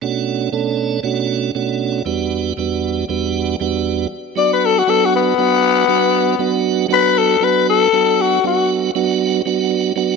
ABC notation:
X:1
M:4/4
L:1/16
Q:"Swing 16ths" 1/4=118
K:Bm
V:1 name="Tenor saxophone"
z16 | z16 | z2 d B A F A F B,8- | B,4 z2 B2 A2 B2 A4 |
F2 F2 z12 |]
V:2 name="Tonewheel organ"
[B,,A,CDF]4 [B,,A,CDA]4 [B,,A,CDF]4 [B,,A,CDF]4 | [E,,G,B,DF]4 [E,,G,B,DF]4 [E,,G,B,DF]4 [E,,G,B,DF]4 | z2 [F,B,DF]4 [F,B,DF]4 [F,B,DF]4 [F,B,DF]2- | [F,B,DF]2 [F,B,DF]4 [F,B,DF]4 [F,B,DF]4 [F,B,DF]2- |
[F,B,DF]2 [F,B,DF]4 [F,B,DF]4 [F,B,DF]4 [F,B,DF]2 |]